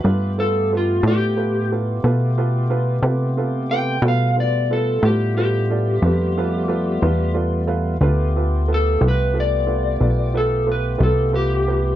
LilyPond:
<<
  \new Staff \with { instrumentName = "Electric slide guitar" } { \time 12/8 \key g \major \tempo 4. = 60 b'8 a'8 f'8 g'4 r2. g''8 | f''8 d''8 a'8 g'8 g'2. r4 | r4 a'8 b'8 d''4. a'8 b'8 a'8 g'4 | }
  \new Staff \with { instrumentName = "Upright piano" } { \time 12/8 \key g \major <f' a' b'>8 <f' a' b'>8 <f' a' b'>8 <f' a' d''>8 <f' a' b'>8 <f' a' b'>8 <f' a' b'>8 <f' a' b'>8 <f' a' b'>8 <f' a' b'>8 <f' a' b'>8 <f' a' b'>8 | <f' a' b'>8 <f' a' b'>8 <f' a' b'>8 <f' a' b'>8 <f' a' b'>8 <f' a' d''>8 <f' a' b'>8 <f' a' b'>8 <f' a' b'>8 <f' a' b'>8 <f' a' b' d''>8 <f' a' b' f''>8 | <f' a' b'>8 <f' a' b'>8 <f' a' b'>8 <f' a' b'>8 <f' a' b'>8 <f' a' b'>8 <f' a' b'>8 <f' a' b'>8 <f' a' b'>8 <f' a' b'>8 <f' a' b'>8 <f' a' b'>8 | }
  \new Staff \with { instrumentName = "Tonewheel organ" } { \time 12/8 \key g \major <a b f' g'>1. | <g a b f'>1. | <a b f' g'>1. | }
  \new Staff \with { instrumentName = "Analog synth bass" } { \clef bass \time 12/8 \key g \major g,4. a,4. b,4. c4. | b,4. a,4. f,4. e,4. | d,4. c,4. b,,4. c,4. | }
>>